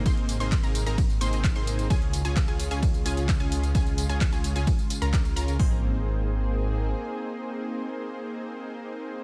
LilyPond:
<<
  \new Staff \with { instrumentName = "Synth pluck" } { \time 4/4 \key aes \major \tempo 4 = 130 c'''8. c'''16 r16 bes''8 bes''16 r8 c'''8. c'''8. | aes''8. aes''16 r16 aes''8 aes''16 r8 aes''8. aes''8. | aes''8. aes''16 r16 aes''8 aes''16 r8. bes''8. bes''8 | c'''1~ |
c'''1 | }
  \new Staff \with { instrumentName = "Supersaw synth" } { \time 4/4 \key aes \major <bes c' ees' aes' c''>8. <bes c' ees' aes' c''>16 r16 <bes c' ees' aes' bes'>8 <bes c' ees' aes' bes'>16 r8 <bes c' ees' aes' c''>8. <bes c' ees' aes' c''>8. | <des' f' aes'>8. <des' f' aes'>16 r16 <des' f' aes'>8 <des' f' aes'>16 r8 <des' f' aes'>8. <des' f' aes'>8. | <des' f' aes'>8. <des' f' aes'>16 r16 <des' f' aes'>8 <des' f' aes'>16 r8. <des' f' bes'>8. <des' f' bes'>8 | <bes c' ees' aes' c''>1~ |
<bes c' ees' aes' c''>1 | }
  \new Staff \with { instrumentName = "Analog synth pad" } { \time 4/4 \key aes \major <c bes>1 | <des aes f'>1~ | <des aes f'>1 | <bes c' aes'>1~ |
<bes c' aes'>1 | }
  \new Staff \with { instrumentName = "Detuned saw bass" } { \clef bass \time 4/4 \key aes \major aes,,8. aes,,8 aes,,8 aes,,8. aes,,8. aes,,8. | des,8. des,8 des,8 des,8. des,8. des,8. | des,8. des,8 des,8 des,16 r8. des,8. des,8 | aes,,2. r4 |
r1 | }
  \new DrumStaff \with { instrumentName = "Drums" } \drummode { \time 4/4 <hh bd cymr tamb>16 hh16 <hho tamb>16 <hh tamb>16 <hc hh bd cymr tamb>16 <hh tamb>16 <hho tamb>16 <hh tamb>16 <hh bd cymr tamb>16 <hh tamb>16 <hho tamb>16 <hh tamb>16 <hc hh bd cymr tamb>16 hh16 <hho tamb>16 <hh tamb>16 | <hh bd cymr tamb>16 hh16 <hho tamb>16 <hh tamb>16 <hc hh bd cymr tamb>16 hh16 <hho tamb>16 <hh tamb>16 <hh bd cymr tamb>16 <hh tamb>16 <hho tamb>16 <hh tamb>16 <hc hh bd cymr tamb>16 hh16 <hho tamb>16 <hh tamb>16 | <hh bd cymr tamb>16 <hh tamb>16 <hho tamb>16 <hh tamb>16 <hc hh bd cymr tamb>16 <hh tamb>16 <hho tamb>16 <hh tamb>16 <hh bd cymr tamb>16 <hh tamb>16 <hho tamb>16 <hh tamb>16 <hc hh bd cymr tamb>16 <hh tamb>16 <hho tamb>16 <hh tamb>16 | <hho bd>4 r4 r4 r4 |
r4 r4 r4 r4 | }
>>